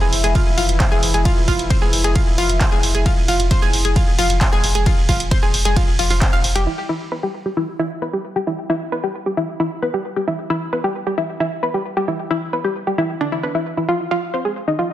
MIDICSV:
0, 0, Header, 1, 5, 480
1, 0, Start_track
1, 0, Tempo, 451128
1, 1334, Time_signature, 4, 2, 24, 8
1, 15889, End_track
2, 0, Start_track
2, 0, Title_t, "Synth arpeggio sound"
2, 0, Program_c, 0, 84
2, 14, Note_on_c, 0, 68, 74
2, 65, Note_off_c, 0, 68, 0
2, 254, Note_on_c, 0, 68, 75
2, 330, Note_off_c, 0, 68, 0
2, 373, Note_on_c, 0, 65, 88
2, 425, Note_off_c, 0, 65, 0
2, 613, Note_on_c, 0, 65, 111
2, 644, Note_off_c, 0, 65, 0
2, 853, Note_on_c, 0, 72, 81
2, 905, Note_off_c, 0, 72, 0
2, 975, Note_on_c, 0, 68, 78
2, 1025, Note_off_c, 0, 68, 0
2, 1214, Note_on_c, 0, 68, 77
2, 1290, Note_off_c, 0, 68, 0
2, 1333, Note_on_c, 0, 65, 85
2, 1384, Note_off_c, 0, 65, 0
2, 1572, Note_on_c, 0, 65, 103
2, 1604, Note_off_c, 0, 65, 0
2, 1813, Note_on_c, 0, 72, 86
2, 1865, Note_off_c, 0, 72, 0
2, 1935, Note_on_c, 0, 68, 80
2, 1985, Note_off_c, 0, 68, 0
2, 2174, Note_on_c, 0, 68, 77
2, 2250, Note_off_c, 0, 68, 0
2, 2294, Note_on_c, 0, 65, 84
2, 2345, Note_off_c, 0, 65, 0
2, 2533, Note_on_c, 0, 65, 109
2, 2564, Note_off_c, 0, 65, 0
2, 2773, Note_on_c, 0, 72, 84
2, 2825, Note_off_c, 0, 72, 0
2, 2895, Note_on_c, 0, 68, 78
2, 2945, Note_off_c, 0, 68, 0
2, 3135, Note_on_c, 0, 68, 78
2, 3210, Note_off_c, 0, 68, 0
2, 3254, Note_on_c, 0, 65, 83
2, 3305, Note_off_c, 0, 65, 0
2, 3493, Note_on_c, 0, 65, 102
2, 3524, Note_off_c, 0, 65, 0
2, 3733, Note_on_c, 0, 72, 82
2, 3785, Note_off_c, 0, 72, 0
2, 3854, Note_on_c, 0, 68, 80
2, 3905, Note_off_c, 0, 68, 0
2, 4094, Note_on_c, 0, 68, 75
2, 4170, Note_off_c, 0, 68, 0
2, 4213, Note_on_c, 0, 65, 89
2, 4265, Note_off_c, 0, 65, 0
2, 4453, Note_on_c, 0, 65, 105
2, 4484, Note_off_c, 0, 65, 0
2, 4693, Note_on_c, 0, 72, 82
2, 4745, Note_off_c, 0, 72, 0
2, 4814, Note_on_c, 0, 68, 78
2, 4865, Note_off_c, 0, 68, 0
2, 5055, Note_on_c, 0, 68, 80
2, 5130, Note_off_c, 0, 68, 0
2, 5174, Note_on_c, 0, 65, 85
2, 5225, Note_off_c, 0, 65, 0
2, 5414, Note_on_c, 0, 65, 105
2, 5444, Note_off_c, 0, 65, 0
2, 5654, Note_on_c, 0, 72, 86
2, 5705, Note_off_c, 0, 72, 0
2, 5775, Note_on_c, 0, 68, 79
2, 5825, Note_off_c, 0, 68, 0
2, 6015, Note_on_c, 0, 68, 75
2, 6091, Note_off_c, 0, 68, 0
2, 6134, Note_on_c, 0, 65, 86
2, 6185, Note_off_c, 0, 65, 0
2, 6373, Note_on_c, 0, 65, 78
2, 6450, Note_off_c, 0, 65, 0
2, 6495, Note_on_c, 0, 65, 77
2, 6571, Note_off_c, 0, 65, 0
2, 6614, Note_on_c, 0, 72, 82
2, 6665, Note_off_c, 0, 72, 0
2, 6735, Note_on_c, 0, 77, 99
2, 6765, Note_off_c, 0, 77, 0
2, 6974, Note_on_c, 0, 67, 80
2, 7050, Note_off_c, 0, 67, 0
2, 7093, Note_on_c, 0, 64, 78
2, 7145, Note_off_c, 0, 64, 0
2, 7333, Note_on_c, 0, 64, 100
2, 7364, Note_off_c, 0, 64, 0
2, 7573, Note_on_c, 0, 71, 83
2, 7625, Note_off_c, 0, 71, 0
2, 7694, Note_on_c, 0, 67, 74
2, 7745, Note_off_c, 0, 67, 0
2, 7934, Note_on_c, 0, 67, 74
2, 8010, Note_off_c, 0, 67, 0
2, 8054, Note_on_c, 0, 64, 86
2, 8105, Note_off_c, 0, 64, 0
2, 8293, Note_on_c, 0, 64, 100
2, 8324, Note_off_c, 0, 64, 0
2, 8533, Note_on_c, 0, 71, 79
2, 8585, Note_off_c, 0, 71, 0
2, 8654, Note_on_c, 0, 67, 75
2, 8705, Note_off_c, 0, 67, 0
2, 8895, Note_on_c, 0, 67, 79
2, 8970, Note_off_c, 0, 67, 0
2, 9013, Note_on_c, 0, 64, 83
2, 9065, Note_off_c, 0, 64, 0
2, 9253, Note_on_c, 0, 64, 100
2, 9284, Note_off_c, 0, 64, 0
2, 9493, Note_on_c, 0, 71, 82
2, 9545, Note_off_c, 0, 71, 0
2, 9614, Note_on_c, 0, 67, 75
2, 9665, Note_off_c, 0, 67, 0
2, 9854, Note_on_c, 0, 67, 75
2, 9930, Note_off_c, 0, 67, 0
2, 9973, Note_on_c, 0, 64, 85
2, 10025, Note_off_c, 0, 64, 0
2, 10213, Note_on_c, 0, 64, 102
2, 10244, Note_off_c, 0, 64, 0
2, 10453, Note_on_c, 0, 71, 80
2, 10505, Note_off_c, 0, 71, 0
2, 10574, Note_on_c, 0, 67, 73
2, 10625, Note_off_c, 0, 67, 0
2, 10814, Note_on_c, 0, 67, 79
2, 10890, Note_off_c, 0, 67, 0
2, 10933, Note_on_c, 0, 64, 81
2, 10985, Note_off_c, 0, 64, 0
2, 11173, Note_on_c, 0, 64, 104
2, 11204, Note_off_c, 0, 64, 0
2, 11414, Note_on_c, 0, 71, 81
2, 11465, Note_off_c, 0, 71, 0
2, 11534, Note_on_c, 0, 67, 74
2, 11585, Note_off_c, 0, 67, 0
2, 11775, Note_on_c, 0, 67, 73
2, 11850, Note_off_c, 0, 67, 0
2, 11893, Note_on_c, 0, 64, 82
2, 11945, Note_off_c, 0, 64, 0
2, 12133, Note_on_c, 0, 64, 100
2, 12164, Note_off_c, 0, 64, 0
2, 12373, Note_on_c, 0, 71, 80
2, 12425, Note_off_c, 0, 71, 0
2, 12494, Note_on_c, 0, 67, 78
2, 12545, Note_off_c, 0, 67, 0
2, 12734, Note_on_c, 0, 67, 79
2, 12810, Note_off_c, 0, 67, 0
2, 12853, Note_on_c, 0, 64, 82
2, 12905, Note_off_c, 0, 64, 0
2, 13093, Note_on_c, 0, 64, 101
2, 13124, Note_off_c, 0, 64, 0
2, 13333, Note_on_c, 0, 71, 80
2, 13385, Note_off_c, 0, 71, 0
2, 13454, Note_on_c, 0, 67, 75
2, 13505, Note_off_c, 0, 67, 0
2, 13694, Note_on_c, 0, 67, 73
2, 13770, Note_off_c, 0, 67, 0
2, 13813, Note_on_c, 0, 64, 88
2, 13865, Note_off_c, 0, 64, 0
2, 14053, Note_on_c, 0, 62, 101
2, 14105, Note_off_c, 0, 62, 0
2, 14174, Note_on_c, 0, 64, 94
2, 14205, Note_off_c, 0, 64, 0
2, 14294, Note_on_c, 0, 71, 81
2, 14371, Note_off_c, 0, 71, 0
2, 14415, Note_on_c, 0, 64, 74
2, 14465, Note_off_c, 0, 64, 0
2, 14655, Note_on_c, 0, 64, 77
2, 14705, Note_off_c, 0, 64, 0
2, 14774, Note_on_c, 0, 65, 82
2, 14825, Note_off_c, 0, 65, 0
2, 15014, Note_on_c, 0, 65, 103
2, 15045, Note_off_c, 0, 65, 0
2, 15254, Note_on_c, 0, 72, 80
2, 15305, Note_off_c, 0, 72, 0
2, 15375, Note_on_c, 0, 68, 75
2, 15425, Note_off_c, 0, 68, 0
2, 15615, Note_on_c, 0, 63, 78
2, 15691, Note_off_c, 0, 63, 0
2, 15734, Note_on_c, 0, 65, 84
2, 15785, Note_off_c, 0, 65, 0
2, 15889, End_track
3, 0, Start_track
3, 0, Title_t, "Synth drone"
3, 0, Program_c, 1, 95
3, 0, Note_on_c, 1, 52, 81
3, 0, Note_on_c, 1, 64, 82
3, 7142, Note_off_c, 1, 52, 0
3, 7142, Note_off_c, 1, 64, 0
3, 15889, End_track
4, 0, Start_track
4, 0, Title_t, "Sub bass"
4, 0, Program_c, 2, 38
4, 14, Note_on_c, 2, 29, 78
4, 127, Note_off_c, 2, 29, 0
4, 134, Note_on_c, 2, 29, 100
4, 248, Note_off_c, 2, 29, 0
4, 254, Note_on_c, 2, 29, 81
4, 371, Note_off_c, 2, 29, 0
4, 494, Note_on_c, 2, 29, 80
4, 607, Note_off_c, 2, 29, 0
4, 614, Note_on_c, 2, 29, 105
4, 728, Note_off_c, 2, 29, 0
4, 735, Note_on_c, 2, 29, 84
4, 851, Note_off_c, 2, 29, 0
4, 974, Note_on_c, 2, 29, 79
4, 1087, Note_off_c, 2, 29, 0
4, 1093, Note_on_c, 2, 29, 99
4, 1208, Note_off_c, 2, 29, 0
4, 1214, Note_on_c, 2, 29, 83
4, 1331, Note_off_c, 2, 29, 0
4, 1454, Note_on_c, 2, 29, 82
4, 1567, Note_off_c, 2, 29, 0
4, 1573, Note_on_c, 2, 29, 97
4, 1688, Note_off_c, 2, 29, 0
4, 1695, Note_on_c, 2, 29, 80
4, 1811, Note_off_c, 2, 29, 0
4, 1936, Note_on_c, 2, 29, 78
4, 2048, Note_off_c, 2, 29, 0
4, 2054, Note_on_c, 2, 29, 103
4, 2169, Note_off_c, 2, 29, 0
4, 2176, Note_on_c, 2, 29, 83
4, 2292, Note_off_c, 2, 29, 0
4, 2416, Note_on_c, 2, 29, 82
4, 2529, Note_off_c, 2, 29, 0
4, 2535, Note_on_c, 2, 29, 102
4, 2650, Note_off_c, 2, 29, 0
4, 2656, Note_on_c, 2, 29, 82
4, 2772, Note_off_c, 2, 29, 0
4, 2896, Note_on_c, 2, 29, 81
4, 3009, Note_off_c, 2, 29, 0
4, 3015, Note_on_c, 2, 29, 103
4, 3130, Note_off_c, 2, 29, 0
4, 3136, Note_on_c, 2, 29, 85
4, 3252, Note_off_c, 2, 29, 0
4, 3375, Note_on_c, 2, 29, 82
4, 3488, Note_off_c, 2, 29, 0
4, 3495, Note_on_c, 2, 29, 103
4, 3609, Note_off_c, 2, 29, 0
4, 3615, Note_on_c, 2, 29, 86
4, 3732, Note_off_c, 2, 29, 0
4, 3856, Note_on_c, 2, 29, 76
4, 3968, Note_off_c, 2, 29, 0
4, 3975, Note_on_c, 2, 29, 99
4, 4089, Note_off_c, 2, 29, 0
4, 4095, Note_on_c, 2, 29, 81
4, 4212, Note_off_c, 2, 29, 0
4, 4335, Note_on_c, 2, 29, 77
4, 4448, Note_off_c, 2, 29, 0
4, 4454, Note_on_c, 2, 29, 104
4, 4569, Note_off_c, 2, 29, 0
4, 4575, Note_on_c, 2, 29, 84
4, 4692, Note_off_c, 2, 29, 0
4, 4815, Note_on_c, 2, 29, 81
4, 4927, Note_off_c, 2, 29, 0
4, 4933, Note_on_c, 2, 29, 100
4, 5048, Note_off_c, 2, 29, 0
4, 5054, Note_on_c, 2, 29, 87
4, 5171, Note_off_c, 2, 29, 0
4, 5294, Note_on_c, 2, 29, 80
4, 5407, Note_off_c, 2, 29, 0
4, 5413, Note_on_c, 2, 29, 100
4, 5527, Note_off_c, 2, 29, 0
4, 5534, Note_on_c, 2, 29, 85
4, 5651, Note_off_c, 2, 29, 0
4, 5773, Note_on_c, 2, 29, 76
4, 5886, Note_off_c, 2, 29, 0
4, 5892, Note_on_c, 2, 29, 101
4, 6007, Note_off_c, 2, 29, 0
4, 6013, Note_on_c, 2, 29, 81
4, 6131, Note_off_c, 2, 29, 0
4, 6253, Note_on_c, 2, 29, 82
4, 6366, Note_off_c, 2, 29, 0
4, 6372, Note_on_c, 2, 29, 104
4, 6487, Note_off_c, 2, 29, 0
4, 6493, Note_on_c, 2, 29, 83
4, 6611, Note_off_c, 2, 29, 0
4, 6734, Note_on_c, 2, 29, 81
4, 6846, Note_off_c, 2, 29, 0
4, 6852, Note_on_c, 2, 29, 101
4, 6968, Note_off_c, 2, 29, 0
4, 6974, Note_on_c, 2, 29, 84
4, 7091, Note_off_c, 2, 29, 0
4, 15889, End_track
5, 0, Start_track
5, 0, Title_t, "Drums"
5, 134, Note_on_c, 9, 46, 110
5, 240, Note_off_c, 9, 46, 0
5, 255, Note_on_c, 9, 42, 64
5, 361, Note_off_c, 9, 42, 0
5, 373, Note_on_c, 9, 36, 123
5, 373, Note_on_c, 9, 42, 65
5, 373, Note_on_c, 9, 51, 69
5, 480, Note_off_c, 9, 36, 0
5, 480, Note_off_c, 9, 42, 0
5, 480, Note_off_c, 9, 51, 0
5, 613, Note_on_c, 9, 46, 107
5, 720, Note_off_c, 9, 46, 0
5, 734, Note_on_c, 9, 42, 64
5, 841, Note_off_c, 9, 42, 0
5, 853, Note_on_c, 9, 36, 120
5, 853, Note_on_c, 9, 39, 113
5, 853, Note_on_c, 9, 42, 59
5, 853, Note_on_c, 9, 51, 65
5, 959, Note_off_c, 9, 39, 0
5, 959, Note_off_c, 9, 42, 0
5, 959, Note_off_c, 9, 51, 0
5, 960, Note_off_c, 9, 36, 0
5, 1093, Note_on_c, 9, 46, 107
5, 1200, Note_off_c, 9, 46, 0
5, 1214, Note_on_c, 9, 42, 67
5, 1320, Note_off_c, 9, 42, 0
5, 1333, Note_on_c, 9, 36, 117
5, 1333, Note_on_c, 9, 42, 65
5, 1333, Note_on_c, 9, 51, 71
5, 1440, Note_off_c, 9, 36, 0
5, 1440, Note_off_c, 9, 42, 0
5, 1440, Note_off_c, 9, 51, 0
5, 1573, Note_on_c, 9, 36, 61
5, 1573, Note_on_c, 9, 46, 100
5, 1680, Note_off_c, 9, 36, 0
5, 1680, Note_off_c, 9, 46, 0
5, 1695, Note_on_c, 9, 42, 64
5, 1801, Note_off_c, 9, 42, 0
5, 1813, Note_on_c, 9, 36, 116
5, 1814, Note_on_c, 9, 42, 65
5, 1814, Note_on_c, 9, 51, 72
5, 1920, Note_off_c, 9, 36, 0
5, 1920, Note_off_c, 9, 42, 0
5, 1920, Note_off_c, 9, 51, 0
5, 2053, Note_on_c, 9, 46, 103
5, 2160, Note_off_c, 9, 46, 0
5, 2174, Note_on_c, 9, 42, 63
5, 2280, Note_off_c, 9, 42, 0
5, 2293, Note_on_c, 9, 36, 120
5, 2293, Note_on_c, 9, 42, 64
5, 2293, Note_on_c, 9, 51, 71
5, 2399, Note_off_c, 9, 42, 0
5, 2399, Note_off_c, 9, 51, 0
5, 2400, Note_off_c, 9, 36, 0
5, 2533, Note_on_c, 9, 46, 107
5, 2640, Note_off_c, 9, 46, 0
5, 2654, Note_on_c, 9, 42, 64
5, 2761, Note_off_c, 9, 42, 0
5, 2773, Note_on_c, 9, 36, 114
5, 2774, Note_on_c, 9, 39, 116
5, 2774, Note_on_c, 9, 42, 62
5, 2774, Note_on_c, 9, 51, 71
5, 2880, Note_off_c, 9, 36, 0
5, 2880, Note_off_c, 9, 39, 0
5, 2880, Note_off_c, 9, 42, 0
5, 2880, Note_off_c, 9, 51, 0
5, 3014, Note_on_c, 9, 46, 102
5, 3120, Note_off_c, 9, 46, 0
5, 3135, Note_on_c, 9, 42, 66
5, 3241, Note_off_c, 9, 42, 0
5, 3253, Note_on_c, 9, 36, 117
5, 3254, Note_on_c, 9, 42, 65
5, 3254, Note_on_c, 9, 51, 72
5, 3360, Note_off_c, 9, 36, 0
5, 3361, Note_off_c, 9, 42, 0
5, 3361, Note_off_c, 9, 51, 0
5, 3493, Note_on_c, 9, 46, 105
5, 3600, Note_off_c, 9, 46, 0
5, 3614, Note_on_c, 9, 42, 69
5, 3721, Note_off_c, 9, 42, 0
5, 3733, Note_on_c, 9, 36, 115
5, 3734, Note_on_c, 9, 42, 66
5, 3734, Note_on_c, 9, 51, 74
5, 3840, Note_off_c, 9, 36, 0
5, 3840, Note_off_c, 9, 42, 0
5, 3840, Note_off_c, 9, 51, 0
5, 3973, Note_on_c, 9, 46, 104
5, 4080, Note_off_c, 9, 46, 0
5, 4095, Note_on_c, 9, 42, 67
5, 4201, Note_off_c, 9, 42, 0
5, 4214, Note_on_c, 9, 36, 113
5, 4214, Note_on_c, 9, 42, 64
5, 4214, Note_on_c, 9, 51, 71
5, 4320, Note_off_c, 9, 36, 0
5, 4320, Note_off_c, 9, 42, 0
5, 4320, Note_off_c, 9, 51, 0
5, 4453, Note_on_c, 9, 46, 103
5, 4560, Note_off_c, 9, 46, 0
5, 4574, Note_on_c, 9, 42, 65
5, 4681, Note_off_c, 9, 42, 0
5, 4694, Note_on_c, 9, 36, 112
5, 4694, Note_on_c, 9, 39, 117
5, 4694, Note_on_c, 9, 42, 62
5, 4694, Note_on_c, 9, 51, 69
5, 4800, Note_off_c, 9, 36, 0
5, 4800, Note_off_c, 9, 39, 0
5, 4800, Note_off_c, 9, 42, 0
5, 4800, Note_off_c, 9, 51, 0
5, 4933, Note_on_c, 9, 46, 103
5, 5040, Note_off_c, 9, 46, 0
5, 5054, Note_on_c, 9, 42, 69
5, 5161, Note_off_c, 9, 42, 0
5, 5173, Note_on_c, 9, 36, 117
5, 5173, Note_on_c, 9, 42, 68
5, 5173, Note_on_c, 9, 51, 68
5, 5279, Note_off_c, 9, 42, 0
5, 5279, Note_off_c, 9, 51, 0
5, 5280, Note_off_c, 9, 36, 0
5, 5413, Note_on_c, 9, 36, 58
5, 5413, Note_on_c, 9, 46, 105
5, 5520, Note_off_c, 9, 36, 0
5, 5520, Note_off_c, 9, 46, 0
5, 5535, Note_on_c, 9, 42, 68
5, 5641, Note_off_c, 9, 42, 0
5, 5653, Note_on_c, 9, 36, 118
5, 5654, Note_on_c, 9, 42, 66
5, 5654, Note_on_c, 9, 51, 72
5, 5760, Note_off_c, 9, 36, 0
5, 5760, Note_off_c, 9, 42, 0
5, 5760, Note_off_c, 9, 51, 0
5, 5894, Note_on_c, 9, 46, 103
5, 6000, Note_off_c, 9, 46, 0
5, 6015, Note_on_c, 9, 42, 69
5, 6121, Note_off_c, 9, 42, 0
5, 6133, Note_on_c, 9, 36, 114
5, 6134, Note_on_c, 9, 42, 70
5, 6134, Note_on_c, 9, 51, 72
5, 6240, Note_off_c, 9, 36, 0
5, 6240, Note_off_c, 9, 42, 0
5, 6240, Note_off_c, 9, 51, 0
5, 6373, Note_on_c, 9, 46, 103
5, 6480, Note_off_c, 9, 46, 0
5, 6494, Note_on_c, 9, 46, 60
5, 6601, Note_off_c, 9, 46, 0
5, 6613, Note_on_c, 9, 36, 117
5, 6614, Note_on_c, 9, 39, 122
5, 6614, Note_on_c, 9, 42, 64
5, 6614, Note_on_c, 9, 51, 68
5, 6720, Note_off_c, 9, 36, 0
5, 6720, Note_off_c, 9, 39, 0
5, 6720, Note_off_c, 9, 42, 0
5, 6720, Note_off_c, 9, 51, 0
5, 6853, Note_on_c, 9, 46, 109
5, 6960, Note_off_c, 9, 46, 0
5, 6975, Note_on_c, 9, 42, 73
5, 7081, Note_off_c, 9, 42, 0
5, 15889, End_track
0, 0, End_of_file